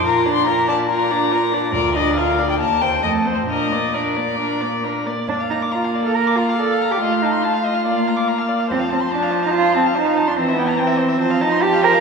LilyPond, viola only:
\new Staff \with { instrumentName = "Viola" } { \time 4/4 \key bes \major \tempo 4 = 141 f'8 d'8 f'8 d'8 f'8 d'8 f'8 d'8 | f'8 d'8 f'8 d'8 bes8 c'8 a8 c'8 | d'8 bes8 d'8 bes8 d'8 bes8 d'8 bes8 | bes1 |
a2 bes2 | f1 | e2 f2 | }